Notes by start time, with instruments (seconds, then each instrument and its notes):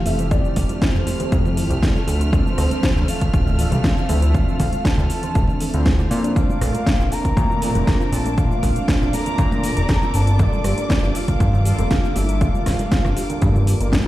Already playing: analog polysynth E3 F3 A3 C4 G4, string section A3 F6
0.05 analog synth bass F1, synth arpeggio sound A4, soft synth lead E5, open hi-hat, shaker
0.19 synth arpeggio sound C5, closed hi-hat, muted conga, shaker
0.30 analog polysynth F3 A3 C4 E4 G4, synth arpeggio sound E4, soft synth lead D5, kick, closed hi-hat, shaker
0.45 synth arpeggio sound F4, shaker
0.56 analog synth bass F1, synth arpeggio sound A4, kick, open hi-hat, muted conga, shaker
0.69 synth arpeggio sound C5, closed hi-hat, high conga, shaker
0.82 synth arpeggio sound E4, soft synth lead C5, kick, snare, closed hi-hat, shaker
0.95 analog synth bass F1, synth arpeggio sound F4, shaker
1.07 synth arpeggio sound A4, open hi-hat, muted conga, shaker
1.20 synth arpeggio sound C5, closed hi-hat, low conga, shaker
1.32 analog synth bass F2, synth arpeggio sound E4, kick, closed hi-hat, shaker
1.46 synth arpeggio sound F4, muted conga, low conga, shaker
1.57 synth arpeggio sound A4, open hi-hat, shaker
1.70 analog synth bass C2, synth arpeggio sound C5, closed hi-hat, shaker
1.82 analog polysynth F3 C4 D4 E4 A4, synth arpeggio sound E4, kick, snare, closed hi-hat, shaker
1.95 synth arpeggio sound F4, muted conga, shaker
2.07 analog synth bass D2, synth arpeggio sound A4, open hi-hat, shaker
2.21 synth arpeggio sound C5, closed hi-hat, shaker
2.32 analog polysynth E3 F3 C4 D4 A4, synth arpeggio sound D4, soft synth lead C5, kick, closed hi-hat, muted conga, shaker
2.46 synth arpeggio sound F4, high conga, shaker
2.58 analog synth bass D2, synth arpeggio sound A4, cross-stick, open hi-hat, shaker
2.71 synth arpeggio sound C5, closed hi-hat, high conga, shaker
2.83 synth arpeggio sound D4, kick, snare, closed hi-hat, muted conga, shaker
2.96 analog synth bass D2, synth arpeggio sound F4, shaker
3.08 synth arpeggio sound A4, soft synth lead F5, open hi-hat, shaker
3.21 synth arpeggio sound C5, kick, closed hi-hat, muted conga, low conga, shaker
3.33 analog synth bass D1, synth arpeggio sound D4, kick, closed hi-hat, shaker
3.47 synth arpeggio sound F4, low conga, shaker
3.58 analog polysynth E3 F3 C4 D4 A4, synth arpeggio sound A4, open hi-hat, shaker
3.72 analog synth bass C2, synth arpeggio sound C5, closed hi-hat, muted conga, shaker
3.84 synth arpeggio sound D4, kick, snare, closed hi-hat, shaker
3.97 synth arpeggio sound F4, shaker
4.09 analog synth bass D2, synth arpeggio sound A4, soft synth lead E5, open hi-hat, muted conga, shaker
4.22 synth arpeggio sound C5, closed hi-hat, shaker
4.33 analog polysynth E3 F3 C4 D4 A4, synth arpeggio sound D4, soft synth lead F5, kick, closed hi-hat, shaker
4.48 synth arpeggio sound F4, shaker
4.60 analog synth bass D2, synth arpeggio sound A4, kick, open hi-hat, muted conga, shaker
4.72 synth arpeggio sound C5, closed hi-hat, high conga, shaker
4.84 synth arpeggio sound D4, soft synth lead A5, kick, snare, closed hi-hat, shaker
4.98 analog synth bass D2, synth arpeggio sound F4, muted conga, shaker
5.10 synth arpeggio sound A4, open hi-hat, shaker
5.23 synth arpeggio sound C5, closed hi-hat, low conga, shaker
5.35 analog synth bass D1, synth arpeggio sound D4, kick, closed hi-hat, shaker
5.47 synth arpeggio sound F4, muted conga, low conga, shaker
5.60 synth arpeggio sound A4, open hi-hat, shaker
5.73 analog synth bass D2, analog polysynth F3 C4 D4 E4 C5, synth arpeggio sound F5, closed hi-hat, shaker
5.85 synth arpeggio sound A4, kick, snare, closed hi-hat, muted conga, shaker
5.99 synth arpeggio sound D5, shaker
6.11 analog synth bass A#2, synth arpeggio sound D5, open hi-hat, shaker
6.24 synth arpeggio sound D4, closed hi-hat, shaker
6.35 analog polysynth A3 A#3 C4 D4 F4, synth arpeggio sound D4, string section D4 D6, soft synth lead F5, kick, closed hi-hat, shaker
6.49 synth arpeggio sound F4, muted conga, high conga, shaker
6.61 analog synth bass A#1, synth arpeggio sound A4, cross-stick, open hi-hat, shaker
6.75 synth arpeggio sound A#4, closed hi-hat, high conga, shaker
6.86 synth arpeggio sound D4, kick, snare, closed hi-hat, muted conga, shaker
6.99 analog synth bass A#1, synth arpeggio sound F4, shaker
7.12 synth arpeggio sound A4, soft synth lead A#5, open hi-hat, shaker
7.25 synth arpeggio sound A#4, kick, closed hi-hat, low conga, shaker
7.37 analog synth bass A#2, synth arpeggio sound D4, kick, closed hi-hat, muted conga, shaker
7.50 synth arpeggio sound F4, low conga, shaker
7.61 analog polysynth A3 A#3 C4 D4 F4, synth arpeggio sound A4, open hi-hat, shaker
7.75 analog synth bass F1, synth arpeggio sound A#4, closed hi-hat, muted conga, shaker
7.87 synth arpeggio sound D4, kick, snare, closed hi-hat, shaker
8.00 synth arpeggio sound F4, shaker
8.12 analog synth bass A#1, synth arpeggio sound A4, soft synth lead A5, open hi-hat, shaker
8.26 synth arpeggio sound A#4, closed hi-hat, muted conga, shaker
8.36 analog polysynth A3 A#3 C4 D4 F4, synth arpeggio sound D4, soft synth lead F5, kick, closed hi-hat, shaker
8.51 synth arpeggio sound F4, shaker
8.63 analog synth bass A#1, synth arpeggio sound A4, kick, open hi-hat, muted conga, shaker
8.76 synth arpeggio sound A#4, closed hi-hat, high conga, shaker
8.88 synth arpeggio sound D4, kick, snare, closed hi-hat, shaker
9.01 analog synth bass A#1, synth arpeggio sound F4, shaker
9.13 synth arpeggio sound A4, soft synth lead A#5, open hi-hat, muted conga, shaker
9.26 synth arpeggio sound A#4, closed hi-hat, low conga, shaker
9.38 analog synth bass A#2, synth arpeggio sound D4, kick, closed hi-hat, shaker
9.51 synth arpeggio sound F4, muted conga, low conga, shaker
9.64 synth arpeggio sound A4, open hi-hat, shaker
9.77 analog synth bass F1, synth arpeggio sound A#4, closed hi-hat, shaker
9.88 analog polysynth A#3 C4 D4 F4 A4, synth arpeggio sound D4, kick, snare, closed hi-hat, shaker
10.02 synth arpeggio sound F4, muted conga, shaker
10.14 analog synth bass G1, synth arpeggio sound A4, soft synth lead A5, open hi-hat, shaker
10.27 synth arpeggio sound A#4, closed hi-hat, shaker
10.38 analog polysynth G3 A#3 D4 F4 A4, synth arpeggio sound D4, soft synth lead D5, kick, closed hi-hat, muted conga, shaker
10.53 synth arpeggio sound F4, high conga, shaker
10.64 analog synth bass G1, synth arpeggio sound G4, cross-stick, open hi-hat, shaker
10.78 synth arpeggio sound A#4, closed hi-hat, high conga, shaker
10.89 synth arpeggio sound D4, kick, snare, closed hi-hat, muted conga, shaker
11.03 analog synth bass G1, synth arpeggio sound F4, shaker
11.15 synth arpeggio sound G4, soft synth lead F5, open hi-hat, shaker
11.28 synth arpeggio sound A#4, kick, closed hi-hat, muted conga, low conga, shaker
11.40 analog synth bass G2, synth arpeggio sound D4, kick, closed hi-hat, shaker
11.53 synth arpeggio sound F4, low conga, shaker
11.64 analog polysynth G3 A#3 D4 F4 A4, synth arpeggio sound G4, soft synth lead F5, open hi-hat, shaker
11.78 analog synth bass F1, synth arpeggio sound A#4, closed hi-hat, muted conga, shaker
11.91 synth arpeggio sound D4, kick, snare, closed hi-hat, shaker
12.04 synth arpeggio sound F4, shaker
12.16 analog synth bass G1, synth arpeggio sound G4, soft synth lead E5, open hi-hat, muted conga, shaker
12.29 synth arpeggio sound A#4, closed hi-hat, shaker
12.40 analog polysynth G3 A#3 D4 F4 A4, synth arpeggio sound D4, soft synth lead F5, kick, closed hi-hat, shaker
12.54 synth arpeggio sound F4, high conga, shaker
12.66 analog synth bass G1, synth arpeggio sound G4, kick, cross-stick, snare, open hi-hat, muted conga, shaker
12.79 synth arpeggio sound A#4, closed hi-hat, high conga, shaker
12.91 synth arpeggio sound D4, kick, snare, closed hi-hat, shaker
13.04 analog synth bass G1, synth arpeggio sound F4, cross-stick, muted conga, shaker
13.16 synth arpeggio sound G4, open hi-hat, shaker
13.30 synth arpeggio sound A#4, closed hi-hat, low conga, shaker
13.41 analog synth bass G2, synth arpeggio sound D4, kick, closed hi-hat, shaker
13.55 synth arpeggio sound F4, muted conga, low conga, shaker
13.67 synth arpeggio sound G4, open hi-hat, shaker
13.79 analog synth bass G1, analog polysynth G3 A#3 D4 F4 A#4, synth arpeggio sound A#4, closed hi-hat, shaker
13.92 synth arpeggio sound D4, kick, snare, closed hi-hat, high tom, muted conga, shaker